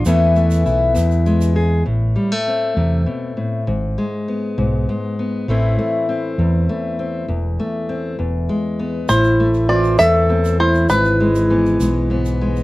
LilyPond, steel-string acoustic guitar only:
\new Staff \with { instrumentName = "Steel-string acoustic guitar" } { \clef bass \time 6/8 \key a \minor \tempo 4. = 66 << { <e a b e'>8 a8 e'4 gis8 gis'8 | r8 g16 a16 c'2 | r8 gis8 b4 gis8 b8 | <e a c' e'>8 a8 c'4 a8 c'8 |
r8 a8 c'8 r8 gis8 b8 | r8 a8 c'8 a8 c'8 a8 | r8 gis8 b8 gis8 b8 gis8 | } \\ { e,4. e,4. | a,4. c8 b,8 a,8 | gis,4. gis,4. | a,4. e,4. |
e,4. e,4. | a,4 e4 e,4 | gis,4 e4 gis,4 | } >> }